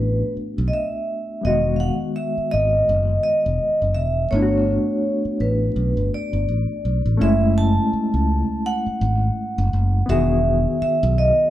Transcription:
0.00 0.22 A1 medium
0.00 1.39 A3 medium
0.00 1.40 B3 medium
0.00 1.41 D4 medium
0.00 1.42 F#4 medium
0.00 0.33 B4 medium
0.37 muted fingered electric bass stroke soft
0.58 0.70 B1 medium
0.68 0.73 D#5 medium
0.73 1.47 E5 medium
1.41 1.89 E1 medium
1.41 4.29 D#3 medium
1.41 1.50 G3 soft
1.41 4.28 B3 medium
1.41 1.76 D#5 medium
1.47 4.30 G#3 medium
1.47 4.30 F#4 medium
1.76 1.81 F5 medium
1.76 1.96 F#5 medium
2.16 2.53 E5 medium
2.38 muted fingered electric bass stroke soft
2.51 2.81 G#1 medium
2.51 3.20 D#5 medium
2.89 3.17 F#1 medium
3.23 3.98 D#5 medium
3.46 3.58 E1 medium
3.82 3.96 F#1 medium
3.95 4.25 E1 medium
3.95 4.33 E5 medium
4.31 4.77 G1 loud
4.31 7.16 A3 medium
4.31 7.17 B3 soft
4.31 7.18 D4 medium
4.31 5.43 C#5 medium
4.36 4.42 E4 medium
4.42 7.22 F#4 medium
5.25 muted fingered electric bass stroke soft
5.40 5.69 A1 medium
5.40 6.09 B4 medium
5.76 5.93 B1 medium
5.97 6.09 G1 medium
6.14 7.25 D5 medium
6.33 6.45 G1 medium
6.48 6.65 A1 medium
6.85 7.01 B1 medium
7.06 7.17 A1 medium
7.17 7.78 F#1 loud
7.17 10.03 A3 medium
7.17 10.04 C#4 medium
7.17 10.05 E4 medium
7.22 10.06 G#3 medium
7.22 7.58 E5 loud
7.58 8.68 A5 loud
7.93 muted fingered electric bass stroke soft
8.14 8.42 C#2 medium
8.66 10.14 F#5 loud
8.86 muted fingered electric bass stroke soft
9.01 9.29 G#1 medium
9.58 9.70 F#1 medium
9.73 10.01 F#1 medium
10.06 10.65 E1 loud
10.06 11.50 D#3 medium
10.06 11.50 B3 medium
10.06 11.50 F#4 medium
10.06 10.81 E5 loud
10.12 11.50 G#4 medium
10.82 11.18 E5 medium
10.82 muted fingered electric bass stroke soft
11.03 11.31 B1 loud
11.18 11.50 D#5 medium

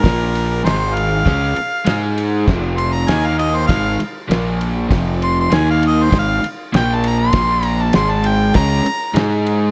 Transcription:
0.00 0.63 A#2 medium
0.00 0.64 F3 loud
0.00 0.63 A#4 loud
0.04 0.61 A#1 medium
0.04 0.64 A#3 loud
0.04 kick loud
0.04 snare loud
0.04 ride medium
0.35 ride medium
0.64 1.22 G#1 medium
0.64 1.24 G#2 medium
0.64 1.24 D#3 medium
0.64 1.25 G#3 loud
0.64 0.96 C5 medium
0.64 snare loud
0.64 ride medium
0.95 2.13 F5 loud
0.95 ride medium
1.25 1.54 C#2 medium
1.25 1.55 C#3 medium
1.25 1.55 G#3 loud
1.25 1.56 C#4 loud
1.25 kick loud
1.25 snare loud
1.25 ride medium
1.55 muted overdriven electric guitar stroke medium
1.55 muted fingered electric bass stroke soft
1.55 ride medium
1.85 2.44 G#2 medium
1.85 2.46 G#3 loud
1.85 2.47 D#4 loud
1.85 2.47 G#4 loud
1.85 snare loud
1.85 ride loud
2.18 ride medium
2.46 3.04 F1 medium
2.46 3.07 F2 medium
2.46 3.08 C3 loud
2.46 3.08 F3 loud
2.46 kick loud
2.46 snare loud
2.46 crash medium
2.77 2.94 C6 loud
2.77 ride medium
2.93 3.11 A#5 medium
3.08 3.65 D#2 medium
3.08 3.68 D#3 medium
3.08 3.69 A#3 medium
3.08 3.69 D#4 medium
3.08 3.27 G#5 loud
3.08 snare loud
3.08 ride loud
3.26 3.38 F5 medium
3.39 3.58 D#5 loud
3.39 ride medium
3.56 3.67 C5 loud
3.67 3.97 G#1 loud
3.67 3.98 G#2 medium
3.67 3.99 D#3 loud
3.67 3.99 G#3 loud
3.67 3.98 F5 loud
3.67 kick loud
3.67 snare loud
3.67 ride loud
4.00 muted overdriven electric guitar stroke medium
4.00 muted fingered electric bass stroke soft
4.00 ride medium
4.28 4.86 A#1 medium
4.28 4.89 A#2 medium
4.28 4.89 F3 loud
4.28 4.90 A#3 loud
4.28 ride medium
4.32 snare loud
4.61 ride medium
4.88 5.47 F1 medium
4.88 5.49 F2 loud
4.88 5.50 C3 loud
4.88 5.50 F3 loud
4.88 kick loud
4.88 snare loud
4.88 ride medium
5.22 5.36 C6 medium
5.22 ride medium
5.40 5.56 C6 medium
5.50 6.08 D#2 medium
5.50 6.10 D#3 medium
5.50 6.11 A#3 medium
5.50 6.11 D#4 loud
5.50 5.67 G#5 medium
5.50 snare loud
5.50 ride medium
5.70 5.83 F5 medium
5.83 ride medium
5.87 6.05 D#5 loud
6.03 6.14 C5 medium
6.09 6.40 G#1 loud
6.09 6.40 G#2 medium
6.09 6.41 D#3 loud
6.09 6.41 G#3 loud
6.09 kick loud
6.09 ride medium
6.14 snare loud
6.19 6.45 F5 loud
6.42 muted overdriven electric guitar stroke medium
6.42 muted fingered electric bass stroke soft
6.42 ride medium
6.73 7.30 A#1 medium
6.73 7.32 A#2 loud
6.73 7.33 F3 loud
6.73 7.33 A#3 loud
6.73 6.96 G5 loud
6.73 snare loud
6.73 ride medium
6.95 7.10 A5 loud
7.04 ride medium
7.09 7.18 A#5 medium
7.19 7.67 C6 loud
7.33 7.90 A#1 medium
7.33 7.93 A#2 loud
7.33 7.93 F3 loud
7.33 7.94 A#3 loud
7.33 kick loud
7.33 snare loud
7.33 ride loud
7.63 ride medium
7.67 7.84 A#5 loud
7.82 7.95 A5 medium
7.93 8.51 G#1 medium
7.93 8.54 G#2 medium
7.93 8.54 D#3 medium
7.93 8.55 G#3 loud
7.93 8.12 C6 loud
7.93 snare loud
7.93 ride loud
8.10 8.29 A5 loud
8.24 8.55 G5 loud
8.24 ride medium
8.54 8.83 C#2 medium
8.54 8.84 C#3 medium
8.54 8.84 G#3 loud
8.54 8.85 C#4 loud
8.54 9.13 A#5 loud
8.54 kick loud
8.54 snare loud
8.54 ride medium
8.85 muted fingered electric bass stroke soft
8.85 muted overdriven electric guitar stroke medium
8.85 ride medium
9.14 9.71 G#2 medium
9.14 9.71 G#3 medium
9.14 9.71 D#4 loud
9.14 9.71 G#4 loud
9.14 snare loud
9.14 ride loud
9.47 ride medium

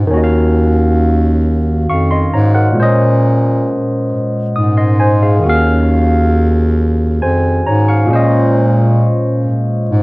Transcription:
0.00 0.14 G#2 medium
0.07 2.71 D#3 medium
0.07 2.73 C#4 medium
0.12 1.85 D#2 loud
0.12 2.74 F#4 medium
0.17 0.20 D#5 medium
0.24 1.48 F5 medium
1.89 2.29 F2 medium
1.89 2.10 F5 medium
1.89 2.10 C#6 medium
2.11 2.32 D#5 medium
2.11 2.31 C6 medium
2.34 2.73 G#2 loud
2.34 2.54 C#5 soft
2.34 2.54 A#5 medium
2.55 2.97 A#4 medium
2.55 2.97 F#5 medium
2.72 5.37 A#2 medium
2.72 5.38 G#3 medium
2.77 3.80 A#2 loud
2.77 2.83 C4 medium
2.77 4.52 C5 medium
2.83 5.42 C#4 medium
2.83 4.54 D#5 medium
4.12 4.20 G#2 soft
4.56 5.47 G#2 medium
4.56 4.76 D#6 medium
4.77 4.98 D#5 medium
4.77 4.98 C6 medium
5.00 5.21 C5 medium
5.00 5.20 G#5 medium
5.23 5.64 G#4 medium
5.23 5.48 F5 medium
5.39 8.04 D#3 medium
5.39 8.06 C#4 medium
5.46 7.18 D#2 loud
5.46 8.07 F#4 medium
5.46 7.21 F5 medium
7.22 7.62 F2 medium
7.22 7.64 C5 medium
7.22 7.64 G#5 medium
7.66 8.07 G#2 loud
7.66 7.87 C#5 medium
7.66 7.87 A#5 medium
7.88 8.31 F5 medium
7.88 8.30 C#6 medium
8.05 10.03 A#2 medium
8.05 10.03 G#3 medium
8.11 9.13 A#2 loud
8.11 10.03 C#4 medium
8.11 10.03 C5 medium
8.16 10.03 D#5 medium
9.45 9.53 G#2 soft
9.90 10.03 G#2 loud

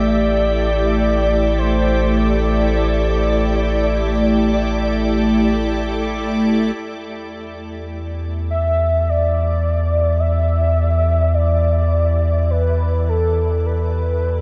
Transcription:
0.00 6.72 A1 medium
0.00 6.76 A3 medium
0.00 14.41 E4 medium
0.00 14.41 G4 medium
0.00 14.41 A4 medium
0.00 0.56 D5 medium
0.00 1.60 D5 loud
0.57 14.41 D5 medium
1.58 2.18 C5 medium
2.17 5.62 D5 medium
6.78 14.41 E2 medium
6.78 14.41 E3 medium
8.50 9.10 E5 loud
9.09 10.21 D5 loud
10.20 11.36 E5 loud
11.34 12.52 D5 loud
12.51 13.10 B4 loud
13.09 13.65 A4 medium
13.66 14.41 B4 medium

